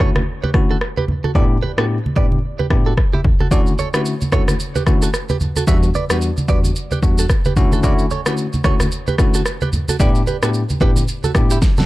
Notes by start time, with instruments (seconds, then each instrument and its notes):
0.00 tine electric piano D3 A3 C#4 E4 F#4, clean electric guitar A4 C#5, kick, cross-stick, low conga
0.16 cross-stick, high conga
0.44 clean electric guitar G4 B4, high conga
0.54 tine electric piano D3 A3 C#4 E4 F#4, kick, cross-stick
0.71 clean electric guitar F#4 A4
0.81 cross-stick
0.97 clean electric guitar G4 B4, high conga
1.08 high conga, low conga
1.24 clean electric guitar F#4 A4, high conga
1.35 tine electric piano A2 B3 D4 E4 G4, clean electric guitar A4 D5, kick, low conga
1.63 clean electric guitar G4 B4, high conga
1.78 tine electric piano A2 B3 D4 E4 G4, clean electric guitar F#4 A4, cross-stick
2.06 high conga
2.16 tine electric piano A2 B3 D4 E4 G4, clean electric guitar B4 D5, kick, low conga
2.32 high conga
2.59 clean electric guitar G4 B4, high conga
2.70 tine electric piano A2 B3 D4 E4 G4, kick, cross-stick
2.86 clean electric guitar F#4 A4
2.97 kick, cross-stick
3.13 clean electric guitar E4 G4, high conga
3.24 kick, high conga, low conga
3.40 clean electric guitar F#4 A4, high conga
3.51 tine electric piano D3 A3 C#4 E4 F#4, clean electric guitar A4 D5, kick, low conga, shaker
3.67 shaker
3.79 clean electric guitar A4 C#5, high conga, shaker
3.94 tine electric piano D3 A3 C#4 E4 F#4, clean electric guitar G4 B4, cross-stick, shaker
4.05 shaker
4.21 high conga, shaker
4.32 tine electric piano D3 A3 C#4 E4 F#4, clean electric guitar A4 C#5, kick, cross-stick, low conga, shaker
4.48 cross-stick, high conga, shaker
4.60 shaker
4.75 clean electric guitar G4 B4, high conga, shaker
4.86 tine electric piano D3 A3 C#4 E4 F#4, kick, cross-stick, shaker
5.02 clean electric guitar F#4 A4, shaker
5.14 cross-stick, shaker
5.29 clean electric guitar G4 B4, high conga, shaker
5.41 high conga, low conga, shaker
5.56 clean electric guitar F#4 A4, high conga, shaker
5.67 tine electric piano E2 G3 B3 D4 F#4, clean electric guitar B4 E5, kick, low conga, shaker
5.83 shaker
5.94 clean electric guitar B4 D5, high conga, shaker
6.10 tine electric piano E2 G3 B3 D4 F#4, clean electric guitar G4 B4, cross-stick, shaker
6.21 shaker
6.37 high conga, shaker
6.48 tine electric piano E2 G3 B3 D4 F#4, clean electric guitar B4 D5, kick, low conga, shaker
6.64 high conga, shaker
6.76 shaker
6.91 clean electric guitar G4 B4, high conga, shaker
7.02 tine electric piano E2 G3 B3 D4 F#4, kick, shaker
7.18 clean electric guitar F#4 A4, shaker
7.30 kick, cross-stick, shaker
7.45 clean electric guitar G4 B4, high conga, shaker
7.56 tine electric piano D3 A3 C#4 E4 F#4, kick, high conga, low conga, shaker
7.72 clean electric guitar F#4 A4, high conga, shaker
7.83 tine electric piano D3 A3 C#4 E4 F#4, clean electric guitar A4 D5, kick, low conga, shaker
7.99 shaker
8.10 clean electric guitar A4 C#5, high conga, shaker
8.26 tine electric piano D3 A3 C#4 E4 F#4, clean electric guitar G4 B4, cross-stick, shaker
8.37 shaker
8.53 high conga, shaker
8.64 tine electric piano D3 A3 C#4 E4 F#4, clean electric guitar A4 C#5, kick, cross-stick, low conga, shaker
8.80 cross-stick, high conga, shaker
8.92 shaker
9.07 clean electric guitar G4 B4, high conga, shaker
9.18 tine electric piano D3 A3 C#4 E4 F#4, kick, cross-stick, shaker
9.34 clean electric guitar F#4 A4, shaker
9.46 cross-stick, shaker
9.61 clean electric guitar G4 B4, high conga, shaker
9.73 high conga, low conga, shaker
9.88 clean electric guitar F#4 A4, high conga, shaker
10.00 tine electric piano A2 B3 D4 E4 G4, clean electric guitar A4 D5, kick, low conga, shaker
10.15 shaker
10.27 clean electric guitar G4 B4, high conga, shaker
10.43 tine electric piano A2 B3 D4 E4 G4, clean electric guitar F#4 A4, cross-stick, shaker
10.54 shaker
10.70 high conga, shaker
10.81 tine electric piano A2 B3 D4 E4 G4, clean electric guitar G4 B4, kick, low conga, shaker
10.96 high conga, shaker
11.08 shaker
11.24 clean electric guitar F#4 A4, high conga, shaker
11.35 tine electric piano A2 B3 D4 E4 G4, kick, cross-stick, shaker
11.50 clean electric guitar E4 G4, shaker
11.62 kick, snare, shaker
11.77 clean electric guitar F#4 A4, snare, high conga, shaker